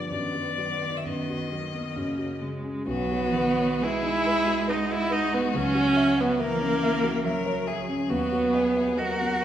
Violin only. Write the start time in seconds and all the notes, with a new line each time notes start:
0.10 D5
0.97 E5
1.05 D#5
2.87 F#4
3.82 G#4
4.69 F#4
6.40 A#4
7.25 A#4
7.67 G#4
8.09 F#4
8.53 G#4
8.99 A#4